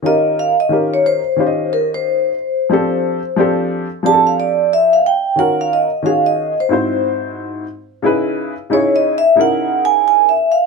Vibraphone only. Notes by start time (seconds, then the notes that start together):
0.06 D#5
0.39 F5
0.60 D#5
0.94 C#5
1.06 C5
1.73 A#4
1.94 C5
4.06 A5
4.27 F5
4.40 D5
4.73 E5
4.93 F5
5.06 G5
5.39 F#5
5.61 F5
5.73 D#5
6.06 F5
6.26 D#5
6.60 C5
8.73 C#5
8.96 D#5
9.18 E5
9.41 F#5
9.85 G#5
10.08 G#5
10.29 E5
10.52 F5